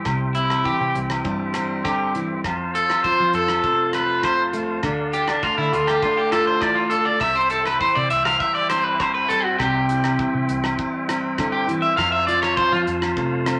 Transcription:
Already playing: steel-string acoustic guitar G3 E4, tonewheel organ C5 E5 G5
0.05 fingered electric bass C2, steel-string acoustic guitar C3, kick, cross-stick, low agogo
0.35 steel-string acoustic guitar C4, clean electric guitar E4, closed hi-hat
0.50 cross-stick, low agogo
0.64 steel-string acoustic guitar E3, clean electric guitar G4, kick
0.81 fingered electric bass C3
0.95 fingered electric bass C2, closed hi-hat
1.10 cross-stick, low agogo
1.25 steel-string acoustic guitar G2 G3, kick
1.54 steel-string acoustic guitar C4, muted clean electric guitar stroke, cross-stick, closed hi-hat, low agogo
1.85 steel-string acoustic guitar D3, clean electric guitar G4, kick, cross-stick, low agogo
2.15 steel-string acoustic guitar E3, closed hi-hat
2.44 fingered electric bass F2, steel-string acoustic guitar F2, tonewheel organ C5 F5 A5, kick, cross-stick, low agogo
2.75 steel-string acoustic guitar F4, clean electric guitar A4, closed hi-hat
2.90 cross-stick, low agogo
3.04 steel-string acoustic guitar F3, clean electric guitar C5, kick
3.20 fingered electric bass F3
3.33 fingered electric bass F2, clean electric guitar A4, closed hi-hat
3.48 cross-stick, low agogo
3.64 steel-string acoustic guitar C3 A3, kick
3.93 steel-string acoustic guitar C4, clean electric guitar B4, cross-stick, closed hi-hat, low agogo
4.23 steel-string acoustic guitar F3, clean electric guitar C5, kick, cross-stick, low agogo
4.53 steel-string acoustic guitar A3, closed hi-hat
4.83 fingered electric bass D2, steel-string acoustic guitar D3, tonewheel organ D5, kick, cross-stick, low agogo
5.13 steel-string acoustic guitar F4, clean electric guitar G4, closed hi-hat
5.28 clean electric guitar D4, cross-stick, low agogo
5.43 steel-string acoustic guitar A3, clean electric guitar F4, kick
5.58 fingered electric bass D3, clean electric guitar E4
5.73 fingered electric bass D2, clean electric guitar F4, closed hi-hat
5.87 clean electric guitar G4, cross-stick, low agogo
6.02 steel-string acoustic guitar A2 D4, clean electric guitar F4, kick
6.17 clean electric guitar G4
6.32 steel-string acoustic guitar F4, clean electric guitar A4, cross-stick, closed hi-hat, low agogo
6.47 clean electric guitar C5
6.61 steel-string acoustic guitar E3, clean electric guitar D5, kick, cross-stick, low agogo
6.75 clean electric guitar F4
6.90 steel-string acoustic guitar D3, clean electric guitar A4, closed hi-hat
7.05 clean electric guitar D5
7.20 fingered electric bass C2, steel-string acoustic guitar C3, tonewheel organ C5 E5 G5, clean electric guitar E5, kick, cross-stick, low agogo
7.35 clean electric guitar C5
7.50 steel-string acoustic guitar E4, clean electric guitar A4, closed hi-hat
7.66 clean electric guitar B4, cross-stick, low agogo
7.81 steel-string acoustic guitar E3, clean electric guitar C5, kick
7.95 fingered electric bass C3, clean electric guitar D5
8.10 fingered electric bass C2, clean electric guitar E5, closed hi-hat
8.25 clean electric guitar F5, cross-stick, low agogo
8.40 steel-string acoustic guitar G2 G3, clean electric guitar E5, kick
8.55 clean electric guitar D5
8.70 steel-string acoustic guitar C4, clean electric guitar C5, cross-stick, closed hi-hat, low agogo
8.85 clean electric guitar B4
9.00 clean electric guitar C5, kick, cross-stick, low agogo
9.14 clean electric guitar B4
9.28 steel-string acoustic guitar G3, clean electric guitar A4, closed hi-hat
9.44 clean electric guitar F#4
9.58 fingered electric bass C2, steel-string acoustic guitar C3, clean electric guitar G4, kick, cross-stick, low agogo
9.89 steel-string acoustic guitar E4, closed hi-hat
10.04 cross-stick, low agogo
10.19 steel-string acoustic guitar E3, kick
10.34 fingered electric bass C3
10.49 fingered electric bass C2, closed hi-hat
10.64 cross-stick, low agogo
10.79 steel-string acoustic guitar G2 G3, kick
11.09 steel-string acoustic guitar C4, cross-stick, closed hi-hat, low agogo
11.38 steel-string acoustic guitar D3, kick, cross-stick, low agogo
11.52 clean electric guitar G4
11.68 steel-string acoustic guitar E3, closed hi-hat
11.82 clean electric guitar E5
11.96 steel-string acoustic guitar F2, fingered electric bass F2, tonewheel organ F5 A5, clean electric guitar F5, kick, cross-stick, low agogo
12.12 clean electric guitar E5
12.27 steel-string acoustic guitar F4, clean electric guitar D5, closed hi-hat
12.42 clean electric guitar C#5, cross-stick, low agogo
12.57 steel-string acoustic guitar F3, clean electric guitar C5, kick
12.72 fingered electric bass F3, clean electric guitar F4
12.87 fingered electric bass F2, closed hi-hat
13.02 cross-stick, low agogo
13.17 steel-string acoustic guitar C3 A3, kick
13.46 steel-string acoustic guitar C4, cross-stick, closed hi-hat, low agogo

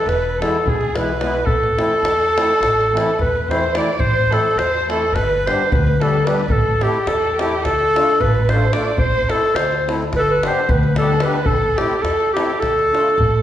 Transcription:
0.05 upright bass E1, violin B4, clarinet B4, davul high
0.39 accordion E3 G#3 B3 E4, violin A4, clarinet A4, davul high
0.55 davul high
0.65 upright bass B1, violin G#4, clarinet G#4, davul low
0.81 davul high
0.94 accordion E3 G#3 B3 E4, violin B4, clarinet B4, davul high
1.21 accordion E3 G#3 B3 E4, davul high
1.33 davul high
1.45 upright bass A1, violin A4, clarinet A4, davul low
1.64 davul high
1.77 accordion E3 A3 C4 E4, davul high
2.03 upright bass E2, davul high
2.22 davul high
2.36 accordion E3 A3 C4 E4, davul high
2.52 davul high
2.61 upright bass A1, davul high, davul low
2.81 davul high
2.92 accordion E3 A3 C4 E4
2.97 davul high
3.11 davul high
3.19 upright bass E2, clarinet B4, violin B4, davul low
3.37 davul high
3.48 accordion E3 A3 C4 E4, clarinet C5, violin C5, davul high
3.64 davul high
3.73 accordion E3 A3 C4 E4, clarinet D5, violin D5, davul high
3.87 davul high
3.99 upright bass A1, clarinet C5, violin C5, davul low
4.30 accordion E3 A3 C4 E4, violin A4, clarinet A4, davul high
4.56 upright bass E2, violin C5, clarinet C5, davul high
4.74 davul high
4.87 accordion E3 A3 C4 E4, violin A4, clarinet A4, davul high
5.02 davul high
5.12 upright bass G1, violin B4, clarinet B4, davul high, davul low
5.46 accordion G3 B3 D4 G4, violin C5, clarinet C5, davul high
5.71 upright bass D2, violin B4, clarinet B4, davul low
5.87 davul high
6.00 accordion G3 B3 D4 G4, violin A4, clarinet A4, davul high
6.24 accordion G3 B3 D4 G4, violin B4, clarinet B4, davul high
6.40 davul high
6.48 upright bass A1, violin A4, clarinet A4, davul low
6.81 accordion A3 C4 E4 A4, violin G4, clarinet G4, davul high
7.06 upright bass E2, violin A4, clarinet A4, davul high
7.22 davul high
7.36 accordion A3 C4 E4 A4, violin G4, clarinet G4, davul high
7.52 davul high
7.62 upright bass D2, violin A4, clarinet A4, davul high, davul low
7.95 accordion A3 D4 F4 A4, davul high
8.20 upright bass A1, clarinet B4, violin B4, davul low
8.35 davul high
8.48 accordion A3 D4, violin C5, clarinet C5, davul high
8.52 accordion F4 A4
8.73 accordion A3 D4 F4 A4, clarinet D5, violin D5, davul high
8.86 davul high
8.97 upright bass A1, clarinet C5, violin C5, davul low
9.29 accordion A3 C4 E4 A4, violin A4, clarinet A4, davul high
9.54 upright bass D2, violin C5, clarinet C5, davul high
9.72 davul high
9.87 accordion A3 C4 E4 A4, davul high
10.03 davul high
10.12 upright bass G1, violin B4, clarinet B4, davul high, davul low
10.19 clarinet A4, violin A4
10.30 violin B4, clarinet B4
10.43 accordion G3 B3 D4 G4, violin C5, clarinet C5, davul high
10.69 upright bass D2, violin B4, clarinet B4, davul low
10.83 davul high
10.96 accordion G3 B3 D4 G4, clarinet A4, violin A4, davul high
11.20 accordion G3 B3 D4, violin B4, clarinet B4, davul high
11.24 accordion G4
11.33 davul high
11.46 upright bass A1, violin A4, clarinet A4, davul low
11.77 accordion A3 C4 E4 A4, violin G4, clarinet G4, davul high
11.91 davul high
12.02 upright bass E2, clarinet A4, violin A4, davul high
12.20 davul high
12.33 accordion A3 C4 E4 A4, clarinet G4, violin G4, davul high
12.50 davul high
12.59 upright bass D2, violin A4, clarinet A4, davul high, davul low
12.79 davul high
12.92 accordion A3 D4 F4 A4, davul high
13.08 davul high
13.18 upright bass A1, davul low

